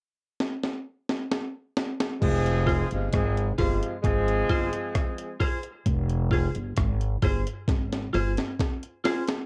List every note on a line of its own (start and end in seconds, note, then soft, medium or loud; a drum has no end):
0.40 snare medium
0.64 snare medium
1.09 snare medium
1.32 snare medium
1.77 snare medium
2.00 snare medium
2.21 2.82 F1 medium
2.21 2.86 F3 loud
2.21 2.86 G#3 loud
2.21 2.86 C4 loud
2.21 2.86 G#4 loud
2.21 kick loud
2.21 crash medium
2.46 closed hi-hat soft
2.67 2.84 F4 medium
2.67 2.85 G#4 medium
2.67 2.85 C5 loud
2.67 kick medium
2.67 open hi-hat soft
2.91 3.11 G1 medium
2.91 3.09 C3 medium
2.91 3.09 F3 medium
2.91 3.09 G#3 medium
2.91 3.09 F4 medium
2.91 closed hi-hat soft
3.13 3.53 G#1 medium
3.13 3.50 F3 medium
3.13 3.50 G#3 medium
3.13 3.50 C4 medium
3.13 3.50 G#4 loud
3.13 kick loud
3.13 cross-stick loud
3.13 closed hi-hat medium
3.37 closed hi-hat soft
3.58 3.79 G1 medium
3.58 3.95 C3 medium
3.58 3.95 F3 medium
3.58 3.95 G#3 medium
3.58 3.75 F4 medium
3.58 3.95 F4 medium
3.58 3.76 G#4 medium
3.58 3.76 C5 medium
3.58 kick medium
3.58 open hi-hat medium
3.82 closed hi-hat soft
4.02 4.44 G#1 medium
4.02 5.36 F3 loud
4.02 5.36 G#3 loud
4.02 5.36 C4 loud
4.02 5.36 G#4 loud
4.02 kick loud
4.02 cross-stick medium
4.02 closed hi-hat medium
4.28 closed hi-hat medium
4.49 4.70 G1 medium
4.49 4.67 F4 medium
4.49 4.67 G#4 medium
4.49 4.68 C5 medium
4.49 kick medium
4.49 open hi-hat soft
4.73 closed hi-hat medium
4.95 kick loud
4.95 cross-stick loud
4.95 closed hi-hat medium
5.18 closed hi-hat medium
5.40 5.57 F4 medium
5.40 5.58 G#4 medium
5.40 5.58 C5 loud
5.40 kick medium
5.40 open hi-hat medium
5.63 closed hi-hat soft
5.86 6.46 F1 medium
5.86 kick medium
5.86 closed hi-hat medium
6.10 closed hi-hat soft
6.31 6.49 F4 medium
6.31 6.49 G#4 loud
6.31 6.50 C5 medium
6.31 kick medium
6.31 open hi-hat soft
6.55 6.75 G1 medium
6.55 closed hi-hat soft
6.77 7.17 G#1 medium
6.77 kick loud
6.77 cross-stick medium
6.77 closed hi-hat medium
7.01 closed hi-hat soft
7.22 7.43 G1 medium
7.22 7.40 F4 medium
7.22 7.40 G#4 medium
7.22 7.41 C5 medium
7.22 kick medium
7.22 open hi-hat medium
7.47 closed hi-hat soft
7.68 8.08 G#1 medium
7.68 kick loud
7.68 snare medium
7.68 closed hi-hat medium
7.92 snare soft
7.92 closed hi-hat medium
8.13 8.34 G1 medium
8.13 8.31 F4 medium
8.13 8.31 G#4 medium
8.13 8.32 C5 medium
8.13 open hi-hat soft
8.37 snare medium
8.37 closed hi-hat medium
8.59 kick loud
8.59 snare medium
8.59 closed hi-hat medium
8.83 closed hi-hat medium
9.04 9.22 F4 medium
9.04 9.22 G#4 medium
9.04 9.23 C5 medium
9.04 snare medium
9.04 open hi-hat medium
9.28 snare medium
9.28 closed hi-hat soft